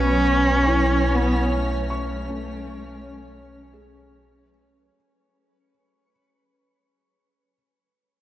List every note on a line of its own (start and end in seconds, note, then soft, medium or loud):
0.00 4.90 B1 medium
0.00 4.94 F#3 medium
0.00 0.89 B3 medium
0.00 1.16 C#4 loud
0.00 4.95 C#4 medium
0.00 2.96 B4 medium
0.00 4.96 B4 medium
0.00 4.95 C#5 loud
0.00 4.94 G#5 medium
0.00 4.96 C#6 medium
0.63 1.89 C#6 medium
0.67 4.48 E4 medium
1.14 1.57 B3 medium
1.56 4.10 A3 medium
1.90 5.70 C#6 medium
2.30 6.11 A3 medium
3.74 7.54 G#4 medium